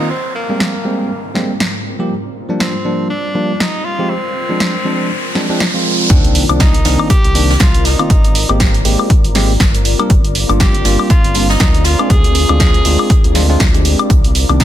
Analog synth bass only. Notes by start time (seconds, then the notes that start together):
6.10 C2
6.49 C2
6.85 C2
7.24 C2
7.60 C2
8.10 G#1
8.49 G#1
8.85 G#1
9.24 G#1
9.60 G1
10.10 G1
10.49 G1
10.85 G1
11.24 G1
11.60 D2
12.10 D2
12.49 D2
12.85 D2
13.24 D2
13.60 D2
14.10 C2
14.49 C2